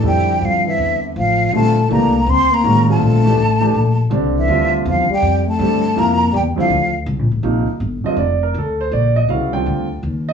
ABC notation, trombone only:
X:1
M:4/4
L:1/8
Q:"Swing" 1/4=162
K:Bblyd
V:1 name="Trombone" clef=bass
G,2 F, E,2 z F,2 | A,2 B,2 C B,2 A,- | A,6 z E,- | E, z F, G,2 A,3 |
B,2 G, F,2 z3 | [K:Bb] z8 | z8 |]